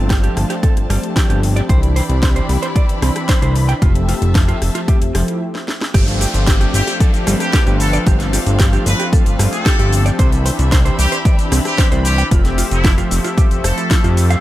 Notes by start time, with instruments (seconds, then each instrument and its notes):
Already playing: analog synth bass G1, analog synth pad F3 A3 C4 D4 F4, violin section C4 A5
0.10 clean electric guitar G4, kick, snare, closed hi-hat
0.23 clean electric guitar G4, closed hi-hat
0.37 analog synth bass G1, cross-stick, open hi-hat
0.50 clean electric guitar G4, closed hi-hat
0.63 clean electric guitar A4, kick, closed hi-hat
0.77 analog synth bass G1, closed hi-hat
0.89 analog synth bass G1, analog synth pad F3 A3 C4 D4 G4, clean electric guitar G3, cross-stick, open hi-hat
1.03 closed hi-hat
1.16 clean electric guitar G4, kick, snare, closed hi-hat
1.30 analog synth bass G1, clean electric guitar G4, closed hi-hat
1.43 open hi-hat
1.56 clean electric guitar D5, closed hi-hat
1.68 analog synth bass C2, analog synth pad E3 C4 D4 G4, violin section E4 D5 B5, clean electric guitar C5, kick, closed hi-hat
1.83 closed hi-hat
1.96 clean electric guitar C5, open hi-hat
2.09 analog synth bass C2, closed hi-hat
2.23 clean electric guitar C5, kick, snare, closed hi-hat
2.36 clean electric guitar C5, closed hi-hat
2.49 analog synth bass C2, open hi-hat
2.63 clean electric guitar C5, closed hi-hat
2.76 clean electric guitar D5, kick, closed hi-hat
2.89 closed hi-hat
3.01 analog synth bass C2, analog synth pad E3 C4 D4 B5, clean electric guitar C4, cross-stick, open hi-hat
3.16 cross-stick, closed hi-hat
3.29 clean electric guitar C5, kick, snare, closed hi-hat
3.42 analog synth bass C2, clean electric guitar C5, closed hi-hat
3.56 open hi-hat
3.69 clean electric guitar G5, closed hi-hat
3.81 analog synth bass F1, analog synth pad F3 A3 C4 G4 E5, clean electric guitar F4, violin section E5 A5, kick, closed hi-hat
3.95 closed hi-hat
4.08 clean electric guitar F4, open hi-hat
4.22 analog synth bass F1, closed hi-hat
4.35 clean electric guitar F4, kick, snare, closed hi-hat
4.48 clean electric guitar F4, closed hi-hat
4.62 analog synth bass F1, cross-stick, open hi-hat
4.75 clean electric guitar F4, closed hi-hat
4.88 clean electric guitar G4, kick, closed hi-hat
5.02 analog synth bass F1, closed hi-hat
5.14 analog synth bass F1, analog synth pad F3 A3 C4 E4 G4, clean electric guitar F3, cross-stick, open hi-hat
5.28 closed hi-hat
5.55 snare
5.68 snare
5.81 snare
5.94 analog synth bass G1, analog synth pad F3 A3 C4 D4 G4, violin section C4 A4 F5, clean electric guitar G4, kick, closed hi-hat, crash, downlifter, shaker
6.08 closed hi-hat, shaker
6.21 clean electric guitar G4, open hi-hat, shaker
6.34 analog synth bass G1, closed hi-hat, shaker
6.47 clean electric guitar G4, kick, snare, closed hi-hat, shaker
6.61 clean electric guitar G4, closed hi-hat, shaker
6.74 analog synth bass G1, trumpet section G4, open hi-hat, shaker
6.87 clean electric guitar G4, closed hi-hat, shaker
7.00 clean electric guitar A4, kick, closed hi-hat, shaker
7.14 closed hi-hat, shaker
7.26 analog synth bass G1, analog synth pad F3 A3 C4 D4 B4, clean electric guitar G3, cross-stick, open hi-hat, shaker
7.40 trumpet section G4, cross-stick, closed hi-hat, shaker
7.53 clean electric guitar G4, kick, snare, closed hi-hat, shaker
7.67 analog synth bass G1, clean electric guitar G4, closed hi-hat, shaker
7.80 trumpet section A4, open hi-hat, shaker
7.93 clean electric guitar D5, closed hi-hat, shaker
8.06 analog synth bass G1, analog synth pad F3 A3 C4 D4 F4, clean electric guitar G4, kick, closed hi-hat, shaker
8.20 snare, closed hi-hat, shaker
8.33 clean electric guitar G4, open hi-hat, shaker
8.46 analog synth bass G1, closed hi-hat, shaker
8.59 clean electric guitar G4, kick, snare, closed hi-hat, shaker
8.73 clean electric guitar G4, closed hi-hat, shaker
8.86 analog synth bass G1, trumpet section B4, open hi-hat, shaker
9.00 clean electric guitar G4, closed hi-hat, shaker
9.13 clean electric guitar A4, kick, closed hi-hat, shaker
9.26 analog synth bass G1, closed hi-hat, shaker
9.38 analog synth bass G1, analog synth pad F3 A3 C4 D4 G4, clean electric guitar G3, cross-stick, open hi-hat, shaker
9.53 trumpet section A4, closed hi-hat, shaker
9.66 clean electric guitar G4, kick, snare, closed hi-hat, shaker
9.79 analog synth bass G1, clean electric guitar G4, closed hi-hat, shaker
9.93 open hi-hat, shaker
10.06 clean electric guitar D5, closed hi-hat, shaker
10.18 analog synth bass C2, analog synth pad E3 C4 D4 G4, violin section D4 E5 B5, clean electric guitar C5, kick, closed hi-hat, shaker
10.32 closed hi-hat, shaker
10.46 clean electric guitar C5, open hi-hat, shaker
10.59 analog synth bass C2, closed hi-hat, shaker
10.72 clean electric guitar C5, kick, snare, closed hi-hat, shaker
10.85 clean electric guitar C5, closed hi-hat, shaker
10.99 analog synth bass C2, trumpet section G4, open hi-hat, shaker
11.12 clean electric guitar C5, closed hi-hat, shaker
11.25 clean electric guitar D5, kick, closed hi-hat, shaker
11.39 closed hi-hat, shaker
11.51 analog synth bass C2, analog synth pad E3 C4 D4 B5, clean electric guitar C4, cross-stick, open hi-hat, shaker
11.65 trumpet section G4, cross-stick, closed hi-hat, shaker
11.78 clean electric guitar C5, kick, snare, closed hi-hat, shaker
11.92 analog synth bass C2, clean electric guitar C5, closed hi-hat, shaker
12.05 trumpet section G4, open hi-hat, shaker
12.18 clean electric guitar G5, closed hi-hat, shaker
12.30 analog synth bass F1, analog synth pad F3 A3 C4 G4 E5, clean electric guitar F4, violin section A4, kick, closed hi-hat, shaker
12.45 snare, closed hi-hat, shaker
12.58 clean electric guitar F4, open hi-hat, shaker
12.71 analog synth bass F1, trumpet section E4, closed hi-hat, shaker
12.84 clean electric guitar F4, kick, snare, closed hi-hat, shaker
12.98 clean electric guitar F4, closed hi-hat, shaker
13.11 analog synth bass F1, open hi-hat, shaker
13.24 clean electric guitar F4, closed hi-hat, shaker
13.38 clean electric guitar G4, kick, closed hi-hat, shaker
13.51 analog synth bass F1, closed hi-hat, shaker
13.64 analog synth bass F1, analog synth pad F3 A3 C4 G4 E5, trumpet section A4, clean electric guitar C5, cross-stick, open hi-hat, shaker
13.78 clean electric guitar E4, closed hi-hat, shaker
13.91 clean electric guitar F4, kick, snare, closed hi-hat, shaker
14.04 analog synth bass F2, clean electric guitar F4, closed hi-hat, shaker
14.17 open hi-hat, shaker
14.30 clean electric guitar F5, closed hi-hat, shaker